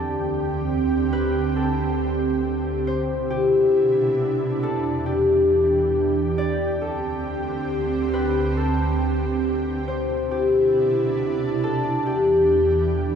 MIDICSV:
0, 0, Header, 1, 3, 480
1, 0, Start_track
1, 0, Tempo, 437956
1, 1230, Time_signature, 4, 2, 24, 8
1, 14416, End_track
2, 0, Start_track
2, 0, Title_t, "Harp"
2, 0, Program_c, 0, 46
2, 0, Note_on_c, 0, 67, 81
2, 0, Note_on_c, 0, 69, 78
2, 0, Note_on_c, 0, 74, 115
2, 448, Note_off_c, 0, 67, 0
2, 1234, Note_on_c, 0, 71, 100
2, 1339, Note_off_c, 0, 74, 0
2, 1707, Note_off_c, 0, 69, 0
2, 1711, Note_on_c, 0, 69, 76
2, 3147, Note_on_c, 0, 72, 88
2, 3213, Note_off_c, 0, 71, 0
2, 3621, Note_on_c, 0, 67, 84
2, 4118, Note_off_c, 0, 69, 0
2, 5075, Note_on_c, 0, 69, 96
2, 5317, Note_off_c, 0, 72, 0
2, 5540, Note_off_c, 0, 67, 0
2, 5545, Note_on_c, 0, 67, 80
2, 6992, Note_on_c, 0, 74, 114
2, 7465, Note_off_c, 0, 69, 0
2, 7470, Note_on_c, 0, 69, 81
2, 8124, Note_off_c, 0, 67, 0
2, 8916, Note_on_c, 0, 71, 106
2, 9016, Note_off_c, 0, 74, 0
2, 9387, Note_off_c, 0, 69, 0
2, 9392, Note_on_c, 0, 69, 75
2, 10826, Note_on_c, 0, 72, 87
2, 10892, Note_off_c, 0, 71, 0
2, 11303, Note_on_c, 0, 67, 81
2, 11799, Note_off_c, 0, 69, 0
2, 12754, Note_on_c, 0, 69, 102
2, 12995, Note_off_c, 0, 72, 0
2, 13218, Note_off_c, 0, 67, 0
2, 13222, Note_on_c, 0, 67, 83
2, 14416, Note_off_c, 0, 67, 0
2, 14416, Note_off_c, 0, 69, 0
2, 14416, End_track
3, 0, Start_track
3, 0, Title_t, "Ambient pad"
3, 0, Program_c, 1, 92
3, 0, Note_on_c, 1, 38, 81
3, 0, Note_on_c, 1, 50, 73
3, 0, Note_on_c, 1, 60, 74
3, 0, Note_on_c, 1, 67, 90
3, 3112, Note_off_c, 1, 50, 0
3, 3112, Note_off_c, 1, 60, 0
3, 3113, Note_off_c, 1, 38, 0
3, 3113, Note_off_c, 1, 67, 0
3, 3149, Note_on_c, 1, 48, 85
3, 3149, Note_on_c, 1, 62, 74
3, 3150, Note_on_c, 1, 47, 77
3, 3150, Note_on_c, 1, 64, 88
3, 5050, Note_off_c, 1, 48, 0
3, 5051, Note_off_c, 1, 47, 0
3, 5051, Note_off_c, 1, 64, 0
3, 5071, Note_on_c, 1, 40, 85
3, 5071, Note_on_c, 1, 52, 71
3, 5071, Note_on_c, 1, 67, 87
3, 6951, Note_off_c, 1, 62, 0
3, 6971, Note_off_c, 1, 40, 0
3, 6971, Note_off_c, 1, 52, 0
3, 6993, Note_on_c, 1, 38, 82
3, 6994, Note_on_c, 1, 50, 72
3, 6995, Note_on_c, 1, 60, 73
3, 10787, Note_off_c, 1, 67, 0
3, 10793, Note_off_c, 1, 38, 0
3, 10794, Note_off_c, 1, 50, 0
3, 10794, Note_off_c, 1, 60, 0
3, 10829, Note_on_c, 1, 48, 80
3, 10829, Note_on_c, 1, 62, 74
3, 10829, Note_on_c, 1, 64, 90
3, 10830, Note_on_c, 1, 47, 74
3, 12730, Note_off_c, 1, 48, 0
3, 12730, Note_off_c, 1, 64, 0
3, 12731, Note_off_c, 1, 47, 0
3, 12749, Note_on_c, 1, 52, 70
3, 12750, Note_on_c, 1, 40, 79
3, 12750, Note_on_c, 1, 67, 92
3, 14416, Note_off_c, 1, 40, 0
3, 14416, Note_off_c, 1, 52, 0
3, 14416, Note_off_c, 1, 62, 0
3, 14416, Note_off_c, 1, 67, 0
3, 14416, End_track
0, 0, End_of_file